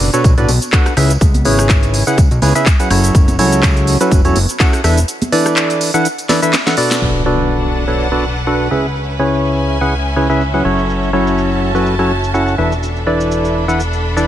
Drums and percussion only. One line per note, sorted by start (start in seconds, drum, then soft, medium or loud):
0.00 open hi-hat loud
0.13 closed hi-hat soft
0.13 tambourine soft
0.13 cabasa medium
0.24 kick loud
0.24 closed hi-hat medium
0.24 tambourine medium
0.24 cabasa medium
0.37 closed hi-hat soft
0.37 tambourine soft
0.37 cabasa soft
0.49 open hi-hat loud
0.49 tambourine loud
0.49 high conga medium
0.61 closed hi-hat soft
0.61 tambourine soft
0.61 cabasa medium
0.73 kick loud
0.73 clap loud
0.73 closed hi-hat medium
0.73 tambourine soft
0.73 cabasa medium
0.86 cross-stick medium
0.86 closed hi-hat soft
0.86 tambourine soft
0.86 cabasa soft
0.97 cross-stick medium
0.97 open hi-hat loud
0.97 tambourine medium
1.10 closed hi-hat soft
1.10 tambourine soft
1.10 cabasa medium
1.21 kick loud
1.21 closed hi-hat medium
1.21 tambourine medium
1.21 cabasa medium
1.34 closed hi-hat soft
1.34 tambourine soft
1.34 high conga medium
1.34 cabasa soft
1.45 open hi-hat loud
1.45 tambourine medium
1.58 cross-stick medium
1.58 tambourine soft
1.58 cabasa medium
1.69 kick loud
1.69 clap loud
1.69 closed hi-hat medium
1.69 tambourine soft
1.69 cabasa medium
1.83 closed hi-hat soft
1.83 tambourine soft
1.83 cabasa soft
1.94 open hi-hat loud
1.94 tambourine medium
2.07 closed hi-hat soft
2.07 tambourine soft
2.07 cabasa medium
2.18 kick loud
2.18 closed hi-hat medium
2.18 tambourine medium
2.18 cabasa medium
2.31 closed hi-hat soft
2.31 tambourine soft
2.31 cabasa soft
2.42 open hi-hat loud
2.42 tambourine medium
2.42 high conga medium
2.55 closed hi-hat soft
2.55 tambourine soft
2.55 cabasa medium
2.66 kick loud
2.66 clap loud
2.66 closed hi-hat medium
2.66 tambourine medium
2.66 cabasa medium
2.79 closed hi-hat soft
2.79 tambourine soft
2.79 cabasa soft
2.90 cross-stick medium
2.90 open hi-hat loud
2.90 tambourine medium
3.03 closed hi-hat soft
3.03 tambourine soft
3.03 cabasa medium
3.15 kick loud
3.15 closed hi-hat medium
3.15 tambourine soft
3.15 cabasa medium
3.28 closed hi-hat soft
3.28 tambourine soft
3.28 high conga medium
3.28 cabasa soft
3.39 open hi-hat loud
3.39 tambourine medium
3.52 closed hi-hat soft
3.52 cabasa medium
3.63 kick loud
3.63 clap loud
3.63 closed hi-hat medium
3.63 tambourine medium
3.63 cabasa medium
3.77 closed hi-hat soft
3.77 tambourine soft
3.77 cabasa soft
3.87 open hi-hat loud
3.87 tambourine medium
4.01 closed hi-hat soft
4.01 tambourine soft
4.01 cabasa medium
4.11 kick loud
4.11 closed hi-hat medium
4.11 tambourine medium
4.11 cabasa medium
4.25 closed hi-hat soft
4.25 tambourine soft
4.25 cabasa soft
4.36 open hi-hat loud
4.36 tambourine medium
4.36 high conga medium
4.49 closed hi-hat soft
4.49 tambourine soft
4.49 cabasa medium
4.60 kick loud
4.60 clap loud
4.60 closed hi-hat medium
4.60 tambourine soft
4.60 cabasa medium
4.73 cross-stick medium
4.73 closed hi-hat soft
4.73 tambourine soft
4.73 cabasa soft
4.84 cross-stick medium
4.84 open hi-hat loud
4.84 tambourine medium
4.97 closed hi-hat soft
4.97 tambourine soft
4.97 cabasa medium
5.08 closed hi-hat medium
5.08 tambourine soft
5.08 cabasa medium
5.22 closed hi-hat soft
5.22 tambourine soft
5.22 high conga medium
5.22 cabasa soft
5.32 open hi-hat loud
5.32 tambourine medium
5.46 cross-stick medium
5.46 closed hi-hat soft
5.46 tambourine soft
5.46 cabasa medium
5.56 clap loud
5.56 closed hi-hat medium
5.56 tambourine soft
5.56 cabasa medium
5.70 closed hi-hat soft
5.70 tambourine soft
5.70 cabasa soft
5.81 open hi-hat loud
5.81 tambourine medium
5.94 closed hi-hat soft
5.94 tambourine soft
5.94 cabasa medium
6.05 closed hi-hat medium
6.05 tambourine medium
6.05 cabasa medium
6.18 closed hi-hat soft
6.18 tambourine soft
6.18 cabasa soft
6.29 snare medium
6.29 open hi-hat loud
6.29 tambourine medium
6.29 high conga medium
6.42 closed hi-hat soft
6.42 tambourine soft
6.42 cabasa medium
6.53 snare medium
6.53 clap loud
6.53 closed hi-hat medium
6.53 tambourine medium
6.53 cabasa medium
6.67 snare medium
6.67 closed hi-hat soft
6.67 tambourine soft
6.67 cabasa soft
6.77 open hi-hat loud
6.77 tambourine loud
6.91 snare medium
6.91 tambourine soft
6.91 cabasa medium
7.02 cabasa soft
7.16 cabasa soft
7.40 cabasa medium
7.51 cabasa soft
7.64 cabasa soft
7.88 cabasa medium
7.99 cabasa soft
8.37 cabasa medium
8.47 cabasa soft
8.85 cabasa medium
8.96 cabasa soft
9.09 cabasa soft
9.33 cabasa medium
9.44 cabasa soft
9.58 cabasa soft
9.82 cabasa medium
9.93 cabasa soft
10.06 cabasa soft
10.30 cabasa medium
10.41 cabasa soft
10.54 cabasa soft
10.79 cabasa medium
10.90 cabasa soft
11.03 cabasa soft
11.27 cabasa medium
11.38 cabasa soft
11.51 cabasa soft
11.75 cabasa medium
11.86 cabasa soft
12.00 cabasa soft
12.24 cabasa medium
12.35 cabasa soft
12.48 cabasa soft
12.72 cabasa medium
12.83 cabasa soft
12.96 cabasa soft
13.20 cabasa medium
13.31 cabasa soft
13.45 cabasa soft
13.69 cabasa medium
13.80 cabasa soft
13.93 cabasa soft
14.17 cabasa medium